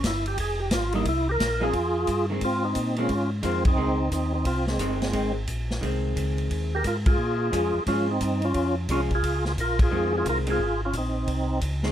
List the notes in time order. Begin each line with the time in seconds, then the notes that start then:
0.04 G1 E4, kick, snare, hi-hat pedal, ride
0.26 G4, ride
0.38 F1 G#4, kick, ride
0.60 G4
0.71 G#1 F4, kick, snare, hi-hat pedal, ride
0.92 G3 A#3 D#4 E4, ride
1.05 C2 E4, kick, ride
1.29 G4 A#4
1.40 A#1, kick, snare, hi-hat pedal, ride
1.60 F3 C4 D#4 F4 G#4
1.73 F2, kick, ride
2.07 G2, kick, hi-hat pedal, ride
2.30 D#3 G#3 C4
2.41 G#2 C4 F4, kick, ride
2.65 C4 D#4
2.75 A#2, kick, hi-hat pedal, ride
2.96 D#3 G#3 C4 F4, ride
3.01 C#4
3.09 G#2, kick, ride
3.43 F2 D#3 G#3 C4 F4, kick, hi-hat pedal, ride
3.65 C4 D#4, kick, ride
3.76 C#2 D#3 G#3 C4
4.11 D#2 C4 D#4, kick, hi-hat pedal, ride
4.34 C4 D#4
4.45 C2 C4 F4, kick, ride
4.67 G#3 C4, snare
4.79 G1 D#3 G#3 C4, kick, hi-hat pedal, ride
5.02 snare, ride
5.13 G#1 D#3 G#3 C4, kick, ride
5.47 A#1, kick, hi-hat pedal, ride
5.71 snare
5.81 C2 D#3 G#3 C4, kick, ride
6.16 C#2, kick, hi-hat pedal, ride
6.38 ride
6.50 D#2, kick, ride
6.75 G4 A#4
6.84 G#2 F4, kick, hi-hat pedal, ride
6.88 A#4
7.06 F4 G#4, kick, ride
7.18 A#2
7.52 F2 F3 G#3 C#4, kick, hi-hat pedal, ride
7.74 F2
7.86 G#2 F3 G#3 C#4 F4, kick, ride
8.11 C4 D#4
8.20 G2, kick, hi-hat pedal, ride
8.42 C#4 F4, ride
8.54 F2, kick, ride
8.89 C2 F3 G#3 C#4 F4, kick, hi-hat pedal, ride
9.11 kick, ride
9.15 F4 G#4
9.23 C#2, kick, ride
9.45 F4 G#4, snare
9.58 A#1 F4 A#4, kick, hi-hat pedal, ride
9.79 F4 G#4, kick, ride
9.91 F2 D#3 G#3 C4
10.18 F4 G#4
10.25 C2 A#4, kick, hi-hat pedal, ride
10.30 F4
10.47 D#3 G#3 C4 G#4, ride
10.51 F4
10.59 G#1, kick
10.85 C#4 F4
10.93 A#1, kick, hi-hat pedal, ride
10.97 C4 D#4
11.27 C2, kick, ride
11.61 C#2, kick, hi-hat pedal, ride
11.83 D#3 G#3 C4, snare